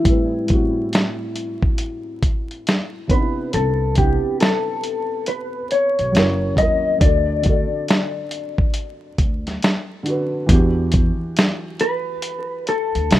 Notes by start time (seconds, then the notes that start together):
Already playing: E4
0.03 A2 G3, kick, closed hi-hat
0.07 C4 B4
0.46 A2 G3, kick, closed hi-hat
0.51 C4 F#4
0.93 snare, closed hi-hat
1.36 closed hi-hat
1.63 kick
1.78 closed hi-hat
2.23 kick, closed hi-hat
2.51 closed hi-hat
2.67 snare, closed hi-hat
3.07 C3 B3 B4, kick, closed hi-hat
3.12 D4 D#4
3.21 E4
3.53 C2 A4, closed hi-hat
3.94 C3 B3 G4, kick, closed hi-hat
3.99 D4 E4
4.40 A4, snare, closed hi-hat
4.84 closed hi-hat
5.26 B4, closed hi-hat
5.71 C#5, closed hi-hat
5.99 B1, closed hi-hat
6.12 F#1 F#3 C#4, closed hi-hat
6.16 E4 A#4, snare
6.55 D#2 F#3 C#4 D#5, kick, closed hi-hat
6.60 E4 A#4
6.98 D2 D3 D4 D5, kick, closed hi-hat
7.03 F#4 A4
7.42 D3 D4, kick, closed hi-hat
7.47 F#4 A4
7.88 snare, closed hi-hat
8.31 closed hi-hat
8.58 kick
8.74 closed hi-hat
9.18 D2, kick, closed hi-hat
9.47 snare, closed hi-hat
9.62 snare, closed hi-hat
10.03 D3 D4, closed hi-hat
10.08 F#4 B4
10.46 E2 E3 D4, kick, closed hi-hat
10.51 F#4 G4
10.92 kick, closed hi-hat
11.37 snare, closed hi-hat
11.79 B4, closed hi-hat
12.22 closed hi-hat
12.67 A4, closed hi-hat
12.95 D2, closed hi-hat
13.11 B1, snare, closed hi-hat